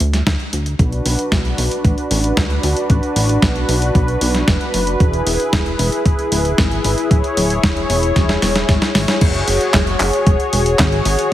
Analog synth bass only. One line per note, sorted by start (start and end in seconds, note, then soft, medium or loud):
0.00 0.22 D2 loud
0.27 0.38 D2 loud
0.53 0.75 D2 medium
0.79 1.01 B1 loud
1.06 1.17 B1 medium
1.32 1.54 B1 medium
1.58 1.69 B1 loud
1.85 1.96 A1 medium
2.11 2.33 A1 loud
2.37 2.59 D2 loud
2.64 2.75 D2 loud
2.90 3.01 A1 loud
3.16 3.38 A1 loud
3.42 3.64 B1 medium
3.69 3.91 B1 loud
3.95 4.17 B1 loud
4.21 4.43 B1 loud
4.48 4.59 F#1 medium
4.74 4.96 F#1 medium
5.00 5.22 E1 loud
5.27 5.38 E1 medium
5.53 5.75 E1 medium
5.79 5.90 E1 loud
6.06 6.17 D1 medium
6.32 6.54 D1 loud
6.58 6.80 G#1 loud
6.85 6.96 G#1 loud
7.11 7.22 D1 loud
7.37 7.59 D1 loud
7.63 7.85 E1 medium
7.90 8.12 E1 loud
8.16 8.38 E1 loud
8.42 8.64 E1 loud
8.69 8.80 G#1 loud
8.95 9.06 G#1 medium
9.21 9.43 F#1 loud
9.48 9.59 F#1 medium
9.74 9.96 F#1 medium
10.00 10.11 F#1 loud
10.27 10.38 E1 medium
10.53 10.75 E1 loud
10.79 11.01 G#1 loud
11.06 11.17 G#1 loud